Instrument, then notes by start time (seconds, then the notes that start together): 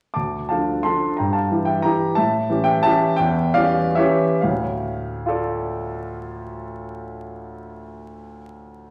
grand piano
0.14 D2 A5 D6
0.49 F3 D4 A4 F5 A5
0.83 F3 D4 A4 A5 C6
1.17 G2 G5 A#5
1.33 F5 A5
1.51 E3 E4 G4
1.65 E5 G5
1.82 E3 E4 G4 G5 A#5
2.15 A2 E5 A5
2.50 E3 C#4 G4
2.64 E5 G5
2.83 E3 C#4 G4 E5 A5
3.16 E2 E5 G5
3.54 E3 C#4 G4 D5 F5
3.95 E3 C#4 G4 C#5 E5
4.41 D2 A2 F5
5.26 F4 A4 D5